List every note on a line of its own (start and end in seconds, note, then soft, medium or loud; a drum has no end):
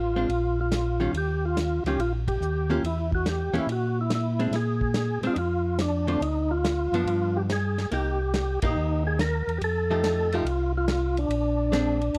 0.00 0.26 A1 medium
0.00 0.60 F4 loud
0.16 0.28 G#3 soft
0.16 0.28 C4 medium
0.16 0.29 D4 medium
0.28 1.09 A#1 medium
0.28 ride medium
0.61 1.11 F4 medium
0.72 snare medium
0.72 hi-hat pedal medium
0.72 ride medium
1.00 1.12 D#3 medium
1.00 1.13 G3 medium
1.00 1.13 C#4 medium
1.00 1.13 F4 medium
1.13 1.80 D#2 medium
1.13 ride medium
1.18 1.45 G4 medium
1.45 1.83 F4 medium
1.57 snare medium
1.57 hi-hat pedal medium
1.57 ride medium
1.84 1.97 C#2 medium
1.84 1.98 D#3 medium
1.84 1.98 G3 medium
1.84 1.98 C#4 medium
1.84 1.98 F4 medium
1.84 2.00 G4 medium
1.84 ride soft
1.98 2.37 A#1 medium
1.98 2.13 F4 medium
1.98 ride medium
2.28 2.71 G4 loud
2.28 kick medium
2.28 ride medium
2.40 2.80 D#2 medium
2.40 hi-hat pedal medium
2.70 2.82 E3 medium
2.70 2.82 A#3 medium
2.70 2.82 C#4 medium
2.70 2.83 F4 medium
2.70 2.83 G4 medium
2.83 3.50 E2 medium
2.83 3.11 E4 medium
2.83 ride medium
3.12 3.26 F#4 medium
3.12 kick medium
3.26 3.56 G4 medium
3.26 snare medium
3.26 hi-hat pedal medium
3.26 ride medium
3.53 3.60 E2 soft
3.53 3.66 E3 medium
3.53 3.66 A#3 medium
3.53 3.66 C#4 medium
3.53 3.66 G4 medium
3.53 ride soft
3.58 3.69 E4 medium
3.66 4.48 A#2 medium
3.66 ride medium
3.72 3.99 F#4 medium
4.01 4.12 E4 medium
4.10 snare medium
4.10 hi-hat pedal medium
4.10 ride medium
4.15 4.56 E4 medium
4.39 4.51 G#3 medium
4.39 4.52 C4 medium
4.39 4.52 D4 medium
4.39 ride soft
4.51 5.19 A#2 medium
4.51 snare soft
4.51 ride medium
4.56 5.21 G#4 loud
4.81 kick medium
4.94 snare medium
4.94 hi-hat pedal medium
4.94 ride medium
5.22 5.29 A#2 soft
5.22 5.36 G#3 medium
5.22 5.36 C4 medium
5.22 5.36 D4 medium
5.22 ride soft
5.27 5.34 F4 medium
5.34 6.17 F2 medium
5.34 5.38 D#4 medium
5.34 ride medium
5.38 5.81 F4 medium
5.79 6.07 D4 medium
5.79 snare medium
5.79 hi-hat pedal medium
5.79 ride medium
6.07 6.20 D3 medium
6.07 6.20 A3 soft
6.07 6.21 C4 medium
6.07 6.21 D4 medium
6.07 6.20 F4 medium
6.07 ride soft
6.21 6.88 D2 medium
6.21 6.51 D#4 medium
6.21 ride medium
6.51 7.38 F4 loud
6.65 snare medium
6.65 hi-hat pedal medium
6.65 ride medium
6.92 7.05 F#2 medium
6.92 7.47 F3 medium
6.92 7.47 B3 medium
6.92 7.47 D4 medium
6.92 ride soft
7.05 7.86 G2 medium
7.05 ride medium
7.36 7.42 G4 medium
7.50 7.90 G#4 medium
7.50 snare medium
7.50 hi-hat pedal medium
7.50 ride medium
7.78 snare soft
7.78 ride soft
7.91 8.58 C2 medium
7.91 8.17 A#3 soft
7.91 8.18 D#4 soft
7.91 8.18 G4 medium
7.91 8.60 G4 loud
7.91 ride medium
8.34 snare medium
8.34 hi-hat pedal medium
8.34 ride medium
8.62 8.75 A#1 medium
8.62 9.16 A#3 medium
8.62 9.16 D#4 medium
8.62 9.03 D#4 loud
8.62 9.17 G4 medium
8.62 kick medium
8.62 ride medium
8.75 9.43 D#2 medium
9.07 9.19 G#4 medium
9.19 9.58 A#4 medium
9.19 snare medium
9.19 hi-hat pedal medium
9.19 ride medium
9.47 9.60 E2 medium
9.47 ride soft
9.58 10.42 F2 medium
9.58 9.62 G4 medium
9.58 ride medium
9.64 10.35 A4 medium
9.90 10.29 F3 soft
9.90 10.30 A3 medium
9.90 10.30 D#4 medium
9.90 10.30 G4 medium
10.04 snare medium
10.04 hi-hat pedal medium
10.04 ride medium
10.32 10.45 F3 medium
10.32 10.45 A3 medium
10.32 10.45 D#4 medium
10.32 10.73 F4 medium
10.32 10.46 G4 medium
10.32 ride soft
10.44 11.25 C2 medium
10.44 ride medium
10.77 11.19 F4 loud
10.88 snare medium
10.88 hi-hat pedal soft
10.88 ride medium
11.17 12.18 D4 medium
11.17 ride soft
11.29 12.10 A#1 medium
11.29 ride medium
11.72 11.98 G#3 medium
11.72 11.98 C4 medium
11.72 11.99 D4 medium
11.72 snare medium
11.72 hi-hat pedal soft
11.72 ride medium
12.01 ride soft
12.14 12.18 F1 medium
12.14 ride medium